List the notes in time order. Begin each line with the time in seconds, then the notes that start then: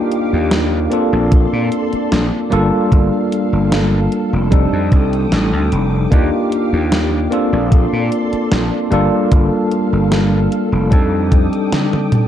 Already playing: A#3 D4 D#4 F4 G4 F5 D6
0.12 closed hi-hat
0.33 D#2
0.51 snare, closed hi-hat
0.90 A#3 C4 D4 F4 A4 D5 C6, closed hi-hat
1.13 A#1
1.32 kick, closed hi-hat
1.53 A#2
1.72 closed hi-hat
1.93 muted slap bass stroke, closed hi-hat
2.12 A#1, snare, closed hi-hat
2.50 G1 G3 A#3 D4 F4 A4 F5, closed hi-hat
2.92 G1, kick, closed hi-hat
3.32 closed hi-hat
3.53 G1
3.72 snare, closed hi-hat
4.12 closed hi-hat
4.33 F1
4.50 G3 C4 D4 D#4 A4 G5 D6 D#6, kick, closed hi-hat
4.73 F2
4.92 C2, kick, closed hi-hat
5.13 closed hi-hat
5.32 A1, snare, closed hi-hat
5.53 D2
5.72 F1, closed hi-hat
6.10 D#2 A#3 D4 D#4 F4 G4 F5, kick, closed hi-hat
6.52 closed hi-hat
6.73 D#2
6.92 snare, closed hi-hat
7.31 A#3 C4 D4 F4 A4 D5 C6, closed hi-hat
7.53 A#1
7.72 kick, closed hi-hat
7.93 A#2
8.12 closed hi-hat
8.33 muted slap bass stroke, closed hi-hat
8.52 A#1, snare, closed hi-hat
8.91 G1 G3 A#3 D4 F4 A4 F5, closed hi-hat
9.32 G1, kick, closed hi-hat
9.72 closed hi-hat
9.93 G1
10.12 snare, closed hi-hat
10.52 closed hi-hat
10.72 F1
10.90 F2 G3 C4 D4 D#4 A4 G5 D6 D#6, kick, closed hi-hat
11.32 kick, closed hi-hat, high tom
11.53 closed hi-hat
11.72 snare, closed hi-hat, mid tom
11.93 mid tom
12.12 closed hi-hat, mid tom